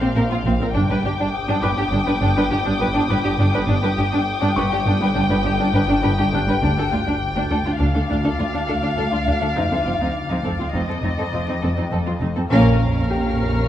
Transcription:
Already playing: synth drone A#1, violin section F5 C6 D6 G6
0.01 cello section A#2, viola section C4, violin section C4
0.15 double bass section A#1, cello section A#2, viola section C4, violin section A#4
0.30 cello section A#2, viola section C4, violin section F4
0.44 double bass section A#1, cello section A#2, viola section C4, violin section C4
0.60 cello section A#2, viola section C4, violin section A#4
0.74 double bass section G1, synth drone G1, cello section G2, violin section D4 G5 D6, viola section D4
0.90 cello section G2, viola section D4, violin section B4
1.04 double bass section G1, cello section G2, viola section D4, violin section G4
1.19 cello section G2, viola section D4, violin section D4
1.33 violin section D#6
1.48 cello section G2, viola section D4, violin section D4
1.62 double bass section G1, cello section G2, viola section D4, violin section B4, felt piano D6
1.77 cello section G2, viola section D4, violin section G4
1.91 double bass section G1, cello section G2, viola section D4, violin section D4
2.07 cello section G2, viola section D4, violin section B4
2.21 double bass section G1, cello section G2, violin section D4, viola section D4
2.36 cello section G2, viola section D4, violin section B4
2.50 double bass section G1, cello section G2, viola section D4, violin section G4
2.65 cello section G2, violin section D4, viola section D4
2.80 double bass section G1, cello section G2, viola section D4, violin section B4
2.94 cello section G2, violin section D4, viola section D4
3.09 double bass section G1, cello section G2, viola section D4, violin section B4
3.24 cello section G2, viola section D4, violin section G4
3.38 double bass section G1, cello section G2, viola section D4, violin section D4
3.53 cello section G2, viola section D4, violin section B4
3.67 double bass section G1, synth drone G1, cello section G2, viola section D4, violin section D4 G5
3.83 cello section G2, viola section D4, violin section B4
3.97 double bass section G1, cello section G2, viola section D4, violin section G4
4.12 cello section G2, viola section D4, violin section D4
4.41 cello section G2, violin section D4, viola section D4
4.56 double bass section G1, cello section G2, viola section D4, violin section B4, felt piano C#6
4.71 cello section G2, viola section D4, violin section G4
4.86 double bass section G1, cello section G2, viola section D4, violin section D4
5.00 cello section G2, viola section D4, violin section B4
5.15 double bass section G1, cello section G2, viola section D4, violin section D4
5.29 cello section G2, viola section D4, violin section B4
5.44 double bass section G1, cello section G2, viola section D4, violin section G4
5.59 cello section G2, viola section D4, violin section D4
5.74 double bass section G1, cello section G2, viola section D4, violin section B4
5.87 cello section G2, viola section D4, violin section D4
6.02 double bass section G1, cello section G2, viola section D4, violin section B4
6.18 cello section G2, viola section D4, violin section G4
6.32 double bass section G1, cello section G2, viola section D4, violin section D4, felt piano G4 F#6
6.47 cello section G2, viola section D4, violin section B4
6.62 cello section D2, double bass section D2, synth drone D2, viola section D4, violin section D4 D6
6.77 cello section D2, viola section D4, violin section A4
6.91 double bass section D2, cello section D2, viola section D4, violin section F4
7.06 cello section D2, viola section D4, violin section D4
7.24 violin section A6
7.35 cello section D2, violin section D4, viola section D4
7.50 cello section D2, double bass section D2, viola section D4, violin section A4
7.65 cello section D2, viola section D4, violin section F4
7.79 double bass section D2, cello section D2, violin section D4 F5, viola section D4
7.94 cello section D2, viola section D4, violin section A4
8.09 double bass section D2, cello section D2, viola section D4, violin section D4
8.24 cello section D2, viola section D4, violin section A4
8.39 cello section D2, double bass section D2, viola section D4, violin section F4
8.53 cello section D2, violin section D4, viola section D4
8.68 cello section D2, double bass section D2, viola section D4, violin section A4
8.82 cello section D2, viola section D4, violin section D4
8.97 cello section D2, double bass section D2, viola section D4, violin section A4
9.11 cello section D2, viola section D4, violin section F4
9.26 double bass section D2, cello section D2, violin section D4, viola section D4
9.40 cello section D2, viola section D4, violin section A4
9.55 double bass section F1, cello section F2, synth drone F2, viola section C4, violin section D#4, felt piano D#4 D#5
9.71 cello section F2, viola section C4, violin section A4
9.85 double bass section F1, cello section F2, viola section C4, violin section F4
10.00 cello section F2, viola section C4, violin section D#4
10.29 cello section F2, viola section C4, violin section D#4
10.44 double bass section F1, cello section F2, viola section C4, violin section A4
10.58 cello section F2, viola section C4, violin section F4
10.74 double bass section F1, cello section F2, viola section C4, violin section D#4 D#5
10.88 cello section F2, viola section C4, violin section A4
11.03 double bass section F1, cello section F2, viola section C4, violin section D#4
11.18 cello section F2, viola section C4, violin section A4
11.33 double bass section F1, cello section F2, viola section C4, violin section F4
11.48 cello section F2, viola section C4, violin section D#4
11.62 double bass section F1, cello section F2, viola section C4, violin section A4
11.76 cello section F2, viola section C4, violin section D#4
11.91 double bass section F1, cello section F2, viola section C4, violin section A4
12.06 cello section F2, viola section C4, violin section F4
12.20 double bass section F1, cello section F2, viola section C4, violin section D#4
12.35 cello section F2, viola section C4, violin section A4
12.50 double bass section A#1, synth drone A#1, cello section A#2, french horn section A#3 C#4, viola section C#4, violin section A#4 F5 A#5 F6
13.10 felt piano G4 G5, violin section C#6

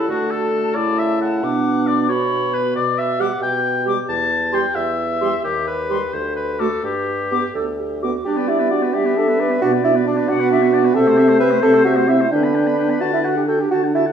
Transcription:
0.08 bassoon D3, french horn A3, clarinet F#4, oboe F#4, flute A5
0.31 oboe A4
0.75 bassoon C#3, clarinet E4, oboe D5, flute A5
0.99 oboe E5
1.21 oboe F#5
1.42 bassoon B2, french horn B3, clarinet D4, flute D6
1.87 oboe D5
2.09 french horn B3, clarinet F#4, oboe C#5, flute B5
2.54 oboe B4
2.75 bassoon B2, oboe D5
2.98 oboe E5
3.19 french horn G3, clarinet G4, oboe F#5, flute D6
3.41 bassoon B2, oboe G5
3.85 french horn G3, clarinet G4, flute D6
4.08 bassoon E2, oboe A5
4.52 french horn G3, clarinet G4, oboe G5, flute C6
4.75 bassoon E2, oboe E5
5.21 french horn G3, clarinet G4, flute C6
5.43 bassoon D#2, oboe G4
5.67 oboe B4
5.90 french horn G3, clarinet G4, flute C6
6.13 bassoon D2, oboe C5
6.36 oboe B4
6.59 french horn A3, clarinet F#4, oboe A4, flute D6
6.83 bassoon G2, oboe G4
7.31 french horn B3, clarinet G4, flute D6
7.55 bassoon D2, clarinet A4
7.79 clarinet G4
8.02 french horn B3, clarinet F#4, flute D6
8.25 french horn G3, clarinet D4, bassoon G4, oboe D5, flute D5
8.37 clarinet B3, oboe B4
8.48 clarinet D4, bassoon E4, oboe D5
8.59 clarinet B3, oboe B4
8.71 clarinet D4, bassoon F#4, oboe D5
8.82 clarinet B3, oboe B4
8.92 french horn G3, clarinet D4, bassoon G4, oboe D5, flute E5
9.04 clarinet B3, oboe B4
9.16 clarinet D4, bassoon A4, oboe D5
9.27 clarinet B3, oboe B4
9.37 clarinet D4, bassoon B4, oboe D5
9.49 clarinet B3, oboe B4
9.60 french horn B2, clarinet D4, bassoon F#4, oboe D5, flute D5
9.71 clarinet B3, oboe B4
9.82 clarinet D4, bassoon E4, oboe D5
9.93 clarinet B3, oboe B4
10.04 clarinet D4, bassoon D4, oboe D5
10.16 clarinet B3, oboe B4
10.27 french horn B2, clarinet D4, bassoon F#4, oboe D5, flute F#5
10.38 clarinet B3, oboe B4
10.49 clarinet D4, oboe D5, flute E5
10.60 clarinet B3, oboe B4
10.70 clarinet D4, flute D5, oboe D5
10.83 clarinet B3, oboe B4
10.95 french horn C3, clarinet C4, bassoon A4, flute C5, oboe E5
11.06 clarinet A3, oboe C5
11.18 clarinet C4, oboe E5
11.28 clarinet A3, oboe C5
11.39 clarinet C4, bassoon B4, oboe E5
11.51 clarinet A3, oboe C5
11.62 french horn C3, clarinet C4, bassoon A4, oboe E5
11.74 clarinet A3, oboe C5
11.85 clarinet C4, bassoon F#4, oboe E5
11.96 clarinet A3, oboe C5
12.07 clarinet C4, bassoon E4, oboe E5
12.19 clarinet A3, oboe C5
12.25 bassoon E4
12.30 french horn D3, clarinet D4, bassoon D4, flute B4, oboe G5
12.42 clarinet B3, oboe B5
12.54 clarinet D4, oboe G5
12.65 clarinet B3, oboe B5
12.76 clarinet D4, oboe G5
12.88 clarinet B3, oboe B5
12.99 french horn D3, clarinet F#4, bassoon F#4, oboe A5
13.11 clarinet D4, bassoon E4
13.23 clarinet F#4, bassoon F#4, oboe F#5
13.36 clarinet D4, bassoon G4
13.48 clarinet F#4, bassoon A4, oboe G5
13.59 clarinet D4, bassoon G4
13.70 french horn D3, clarinet F#4, bassoon F#4, oboe A5
13.83 clarinet D4, oboe F#5
13.94 bassoon E4, clarinet F#4, oboe A5
14.06 clarinet D4, oboe F#5

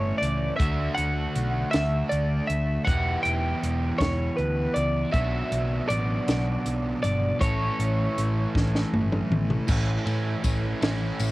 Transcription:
Already playing: picked electric bass G1, distorted electric guitar A2 E3 A3 C#4 E4, overdriven electric guitar A4, clean electric guitar C#5
0.18 picked electric bass C#2, clean electric guitar D5
0.23 closed hi-hat
0.56 picked electric bass D2, distorted electric guitar D3 A3, clean electric guitar E5, kick, closed hi-hat
0.61 distorted electric guitar D4 F#4
0.95 picked electric bass D2, clean electric guitar F#5, closed hi-hat
1.35 picked electric bass B1, closed hi-hat
1.71 picked electric bass D2, clean electric guitar E5, snare, closed hi-hat
2.09 picked electric bass D2, clean electric guitar D5, closed hi-hat
2.47 picked electric bass D2, clean electric guitar E5, closed hi-hat
2.85 picked electric bass E1, distorted electric guitar E3 B3 E4, clean electric guitar F#5, kick, closed hi-hat
2.89 distorted electric guitar G4
3.23 picked electric bass E1, clean electric guitar G5, closed hi-hat
3.63 picked electric bass E1, closed hi-hat
3.98 picked electric bass E1, clean electric guitar C#5, kick, snare, closed hi-hat
4.37 picked electric bass D2, clean electric guitar B4, closed hi-hat
4.74 picked electric bass C#2, clean electric guitar D5, closed hi-hat
5.12 picked electric bass B1, distorted electric guitar B2 F#3 B3 D4 F#4, clean electric guitar E5, kick, closed hi-hat
5.52 picked electric bass B1, closed hi-hat
5.89 picked electric bass A1, clean electric guitar D5, closed hi-hat
6.28 picked electric bass B1, snare, closed hi-hat
6.66 picked electric bass B1, closed hi-hat
7.03 picked electric bass G1, clean electric guitar D5, closed hi-hat
7.40 picked electric bass A1, distorted electric guitar A2 E3 A3 C#4 E4, overdriven electric guitar A4, clean electric guitar C#5, kick, closed hi-hat
7.79 picked electric bass A1, closed hi-hat
8.18 picked electric bass A1, closed hi-hat
8.55 picked electric bass A1, kick, snare
8.75 snare
8.93 picked electric bass G1, high tom
9.12 mid tom
9.31 picked electric bass A1, mid tom
9.50 floor tom
9.68 picked electric bass A1, distorted electric guitar A2 E3 A3 C#4 E4, kick, crash, tambourine
10.06 picked electric bass A2, overdriven electric guitar E3, distorted electric guitar A3 C#4 E4, ride
10.43 picked electric bass A1, distorted electric guitar E3 A3 C#4 E4, kick, ride, tambourine
10.82 picked electric bass A1, distorted electric guitar A2 E3 A3 C#4 E4, snare, ride
11.19 picked electric bass A1, ride, tambourine

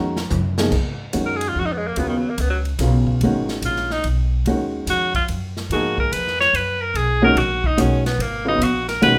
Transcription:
Already playing: upright bass F2, upright piano D#3 G#3 C#4 F#4 A#5
0.17 snare
0.30 upright bass F#2, hi-hat pedal, mid tom
0.58 upright piano F3 A#3 D#4 G#4, snare
0.72 upright bass G#2, kick, crash
1.13 upright bass F#2, upright piano D#3 G#3 C#4 F#4, hi-hat pedal, ride
1.26 tenor saxophone A#4
1.36 tenor saxophone G#4
1.41 ride
1.48 tenor saxophone F4
1.55 upright bass F2, tenor saxophone F#4
1.66 tenor saxophone D#4
1.72 tenor saxophone B3
1.77 tenor saxophone G#3
1.87 tenor saxophone A#3
1.96 upright bass D#2, upright piano C#3 F#3 B3 F4, tenor saxophone B3, ride
2.09 tenor saxophone D#3
2.18 tenor saxophone F#3
2.30 tenor saxophone A#3
2.38 upright bass C#2, tenor saxophone B3, hi-hat pedal, ride
2.50 tenor saxophone F#3
2.65 ride
2.79 upright bass B1, upright piano C#3 F#3 B3 F4, snare, hi-hat pedal, ride
3.07 kick
3.21 upright bass G#1, upright piano D#3 G#3 C#4 F#4, ride
3.49 snare
3.62 upright bass A#1, tenor saxophone F4, hi-hat pedal, ride
3.76 snare
3.90 tenor saxophone D#4, snare
4.04 upright bass B1, ride
4.45 upright bass D#2, upright piano D#3 G#3 C#4 F#4, ride
4.86 upright bass F2, tenor saxophone F#4, snare, hi-hat pedal, ride
5.15 tenor saxophone F4, kick, ride
5.28 upright bass F#2, ride
5.57 snare
5.70 upright bass G#2, upright piano F3 A#3 D#4 G#4, tenor saxophone F#4, ride
5.98 tenor saxophone A#4, kick
6.12 upright bass F2, tenor saxophone B4, hi-hat pedal, ride
6.27 snare
6.40 tenor saxophone C#5, snare
6.53 upright bass F#2, tenor saxophone B4, ride
6.81 tenor saxophone A#4
6.94 upright bass B1, tenor saxophone G#4, ride
7.22 upright piano D#3 G#3 C#4 F#4, tenor saxophone A#4
7.35 upright bass A#1, tenor saxophone F#4, ride
7.64 tenor saxophone D#4, kick
7.77 upright bass B1, upright piano D#3 G#3 C#4 F#4, tenor saxophone C#4, hi-hat pedal, ride
8.06 tenor saxophone B3, snare, ride
8.18 upright bass G#1, tenor saxophone A#3, ride
8.45 upright piano C#3 F#3 B3 F4, tenor saxophone D#4
8.59 upright bass A#1, hi-hat pedal, ride
8.63 tenor saxophone F#4
8.88 tenor saxophone A#4, snare, ride
9.02 upright bass B1, upright piano D#3 G#3 C#4 F#4, tenor saxophone B4, ride

